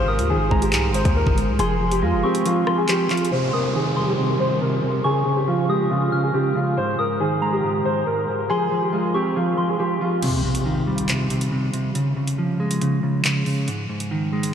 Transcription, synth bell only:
0, 0, Header, 1, 2, 480
1, 0, Start_track
1, 0, Tempo, 431655
1, 1769, Time_signature, 4, 2, 24, 8
1, 16170, End_track
2, 0, Start_track
2, 0, Title_t, "Synth bell"
2, 0, Program_c, 0, 98
2, 88, Note_on_c, 0, 87, 85
2, 540, Note_off_c, 0, 87, 0
2, 567, Note_on_c, 0, 82, 75
2, 1724, Note_off_c, 0, 82, 0
2, 1777, Note_on_c, 0, 84, 101
2, 2450, Note_off_c, 0, 84, 0
2, 2484, Note_on_c, 0, 85, 76
2, 2938, Note_off_c, 0, 85, 0
2, 2965, Note_on_c, 0, 84, 73
2, 3644, Note_off_c, 0, 84, 0
2, 3929, Note_on_c, 0, 87, 73
2, 4380, Note_off_c, 0, 87, 0
2, 4409, Note_on_c, 0, 84, 65
2, 5565, Note_off_c, 0, 84, 0
2, 5606, Note_on_c, 0, 85, 101
2, 6285, Note_off_c, 0, 85, 0
2, 6333, Note_on_c, 0, 87, 77
2, 6783, Note_off_c, 0, 87, 0
2, 6808, Note_on_c, 0, 89, 69
2, 7485, Note_off_c, 0, 89, 0
2, 7769, Note_on_c, 0, 87, 83
2, 8221, Note_off_c, 0, 87, 0
2, 8249, Note_on_c, 0, 82, 69
2, 9405, Note_off_c, 0, 82, 0
2, 9456, Note_on_c, 0, 84, 92
2, 10130, Note_off_c, 0, 84, 0
2, 10167, Note_on_c, 0, 85, 73
2, 10619, Note_off_c, 0, 85, 0
2, 10648, Note_on_c, 0, 84, 73
2, 11326, Note_off_c, 0, 84, 0
2, 16170, End_track
0, 0, End_of_file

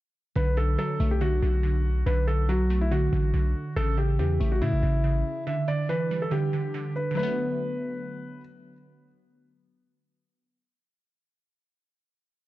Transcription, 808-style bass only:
0, 0, Header, 1, 2, 480
1, 0, Start_track
1, 0, Key_signature, 2, "minor"
1, 0, Tempo, 425532
1, 407, Time_signature, 4, 2, 24, 8
1, 14070, End_track
2, 0, Start_track
2, 0, Title_t, "808-style bass"
2, 0, Program_c, 0, 38
2, 407, Note_on_c, 0, 35, 113
2, 868, Note_off_c, 0, 35, 0
2, 1127, Note_on_c, 0, 35, 105
2, 1588, Note_off_c, 0, 35, 0
2, 1607, Note_on_c, 0, 35, 110
2, 2298, Note_off_c, 0, 35, 0
2, 2327, Note_on_c, 0, 35, 114
2, 3482, Note_off_c, 0, 35, 0
2, 3527, Note_on_c, 0, 33, 106
2, 3758, Note_off_c, 0, 33, 0
2, 3767, Note_on_c, 0, 35, 102
2, 3997, Note_off_c, 0, 35, 0
2, 4247, Note_on_c, 0, 33, 106
2, 4727, Note_on_c, 0, 40, 96
2, 4744, Note_off_c, 0, 33, 0
2, 4955, Note_off_c, 0, 40, 0
2, 4967, Note_on_c, 0, 33, 109
2, 5207, Note_on_c, 0, 45, 95
2, 5224, Note_off_c, 0, 33, 0
2, 5334, Note_on_c, 0, 33, 102
2, 5350, Note_off_c, 0, 45, 0
2, 5441, Note_off_c, 0, 33, 0
2, 5446, Note_on_c, 0, 33, 106
2, 5907, Note_off_c, 0, 33, 0
2, 14070, End_track
0, 0, End_of_file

